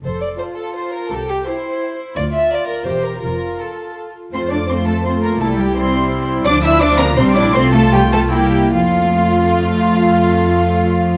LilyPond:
<<
  \new Staff \with { instrumentName = "Violin section" } { \time 3/4 \key f \major \tempo 4 = 166 r4 a''4 a''4 | r4 g''4 g''4 | r4 bes''4 bes''4 | r4 c'''4 c'''4 |
c'''8 d'''8 c'''8 a''8 c'''8 bes''8 | a''8 g''8 c'''4. r8 | d'''8 e'''8 d'''8 bes''8 c'''8 d'''8 | c'''8 a''8 g''8 a''8 g''4 |
f''2.~ | f''2. | }
  \new Staff \with { instrumentName = "Violin section" } { \time 3/4 \key f \major c''8 d''8 c''8 a'8 c''8 bes'8 | a'8 g'8 c''4. r8 | d''8 e''8 d''8 bes'8 c''8 bes'8 | bes'4 a'4 r4 |
c''8 d''8 c''8 a'8 c''8 bes'8 | a'8 g'8 c''4. r8 | d''8 e''8 d''8 bes'8 c''8 d''8 | c''8 a'8 g'8 a'8 g'4 |
f'2.~ | f'2. | }
  \new Staff \with { instrumentName = "Viola section" } { \time 3/4 \key f \major << { a'4 f'2 | g'4 e'2 | f'2 g'4 | f'2~ f'8 r8 |
f'4 f'4 f'4 | e'4 e'2 | d'4 d'4 d'8 e'8 | f'2 e'8 r8 |
f'2.~ | f'2. | } \\ { r2. | r2. | r2. | r2. |
a4 a4 a4 | g4 g2 | f4 f4 g4 | a2 bes8 r8 |
a2.~ | a2. | } >> }
  \new Staff \with { instrumentName = "Cello section" } { \time 3/4 \key f \major f,4 r2 | c,4 r2 | d,4 r4 e,4 | f,4 r2 |
c'8 d'8 c'8 a8 c'8 bes8 | a8 g8 c'4. r8 | d'8 e'8 d'8 bes8 c'8 d'8 | c'8 a8 g8 a8 g4 |
f2.~ | f2. | }
  \new Staff \with { instrumentName = "Double bass section" } { \clef bass \time 3/4 \key f \major f,,4 r2 | c,4 r2 | d,4 r4 e,,4 | f,,4 r2 |
f,2. | c,2. | d,2 bes,,4 | c,2~ c,8 r8 |
f,2.~ | f,2. | }
>>